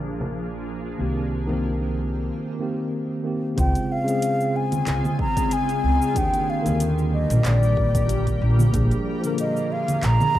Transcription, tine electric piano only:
Already playing: F3 A#3 D4 G#4 A#4
0.98 D#3 A#3 C4 G4
1.47 D#3 A#3
1.51 C4 A#4
2.59 D#3 A#3 C4 G4
3.24 D#3 A#3 C4 G4
3.56 C#3 G#3 C4 F4
4.04 C#3 G#3
4.08 C4 G#4
6.14 D#3 A#3 D4 G4
6.62 D#3 A#3
6.67 D3 A#4
8.72 F3 A#3 D4 G#4
9.20 F3 A#3
9.25 D3 A#4

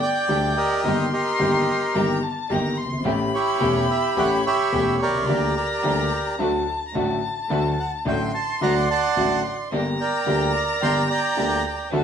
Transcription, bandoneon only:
0.02 D5 G5
0.57 G4 A#4 D#5
1.13 G4 A#4 D#5
3.34 E4 G4 C#5
3.90 E5
4.19 C#5 F#5
4.47 G4 C#5 E5
5.02 G4 A#4 D5
5.56 G4 A#4 D5
7.80 F#5
8.08 G5
8.34 A5
8.62 D5 F#5 A#5
8.90 D5 F#5 A5
9.45 F#5
10.01 A#4 D5 G5
10.56 A#5
10.83 G5 C6
11.10 D5 G5 A#5
11.67 G5

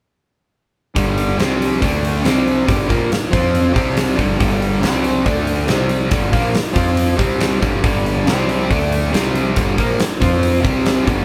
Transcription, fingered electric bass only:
0.96 G1
1.39 C2
1.82 D2
2.26 C2
2.69 G1
2.90 A#1
3.12 muted fingered electric bass stroke
3.34 F2
3.76 C2
4.19 G1
4.41 G1
4.84 C2
5.26 D2
5.69 C2
6.12 G1
6.33 A#1
6.55 muted fingered electric bass stroke
6.76 F2
7.19 C2
7.63 G1
7.84 G1
8.29 C2
8.71 D2
9.14 C2
9.57 G1
9.79 A#1
10.00 muted fingered electric bass stroke
10.22 F2
10.65 C2
11.07 G1

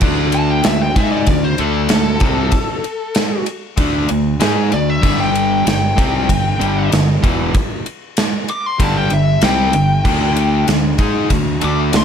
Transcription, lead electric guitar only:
0.35 A5
0.50 G5
0.67 E5
0.82 G5
0.97 E5
1.12 D5
1.28 D5
1.44 C5
1.60 A4
4.74 D5
4.90 E5
5.20 G5
5.68 G5
8.50 D6
8.66 C6
8.82 A5
8.97 G5
9.14 E5
9.44 G5
11.64 D6
11.97 C6

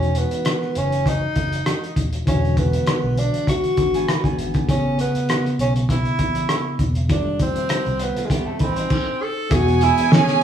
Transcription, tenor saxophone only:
Already playing: C#4
0.18 B3
0.78 C#4
1.08 D#4
2.28 C#4
2.58 B3
3.19 D4
3.49 F#4
4.70 C#4
5.01 B3
5.61 C#4
5.91 E4
7.12 D4
7.42 C4
8.02 B3
8.26 G#3
8.33 A3
8.64 C4
9.23 A4
9.53 F#4
9.83 E4
10.12 C#4

